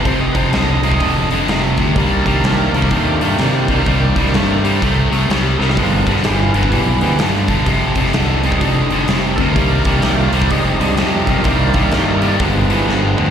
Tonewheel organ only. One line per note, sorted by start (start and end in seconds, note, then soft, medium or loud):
0.04 0.20 C5 loud
0.20 0.36 D#5 medium
0.32 0.36 B4 medium
0.37 0.52 C5 medium
0.54 0.69 D#5 medium
0.67 0.71 D5 medium
0.71 1.63 D#5 medium
0.82 1.10 G3 medium
0.82 1.11 G#3 medium
0.82 1.11 D#4 medium
1.94 3.82 D#3 medium
1.94 3.82 A#3 medium
1.94 3.82 D4 medium
2.23 2.27 A4 medium
2.27 2.89 A#4 medium
2.91 3.07 C5 medium
3.07 3.23 G4 medium
3.22 3.38 F4 loud
3.39 3.55 G4 medium
3.56 4.94 C4 loud
3.87 4.60 D#3 medium
3.87 4.60 A#3 medium
3.87 4.61 D4 medium
5.58 5.62 A4 medium
5.58 6.23 A#4 loud
5.76 6.12 F3 medium
5.76 6.11 G#3 medium
5.76 6.12 B3 medium
6.24 6.40 G4 medium
6.42 6.57 F4 medium
6.57 6.72 B3 loud
6.73 7.17 B2 medium
6.73 7.19 G3 loud
7.01 7.18 F3 soft
7.01 7.18 G#3 soft
7.01 7.18 B3 medium
8.42 9.05 G3 medium
8.42 9.06 G#3 medium
8.42 9.06 D#4 medium
9.36 9.40 A4 medium
9.40 10.02 A#4 loud
9.54 10.28 D#3 medium
9.54 10.29 A#3 medium
9.54 10.29 D4 medium
10.04 10.19 G4 loud
10.19 10.34 F4 medium
10.33 10.50 C4 loud
10.49 10.94 C3 medium
10.49 11.40 G3 medium
10.49 10.96 G#3 loud
10.49 11.41 D#4 medium
11.26 11.44 F4 medium
11.26 11.30 A4 medium
11.30 11.45 A#4 loud
11.45 12.36 D#3 medium
11.45 12.36 A#3 medium
11.45 12.37 D4 medium
11.45 11.61 G4 loud
11.61 11.76 C4 medium
11.61 11.77 F4 medium
11.79 12.39 D#4 loud
12.41 13.30 F3 medium
12.41 13.30 G#3 medium
12.41 13.30 B3 medium